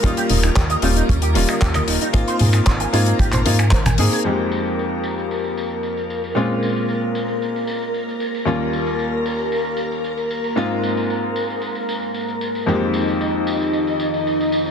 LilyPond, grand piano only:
\new Staff \with { instrumentName = "Grand piano" } { \time 4/4 \key f \minor \tempo 4 = 114 <g bes des' f'>4. <g bes des' f'>4 <g bes des' f'>4. | <bes c' ees' f'>4. <bes c' ees' f'>4 <bes c' ees' f'>8 r8 <bes c' ees' aes'>8 | <f, aes bes c' ees' g'>1 | <bes, aes c' des' f'>1 |
<ees, g bes des' f'>1 | <aes, bes c' ees' f'>1 | <f, aes bes c' ees' g'>1 | }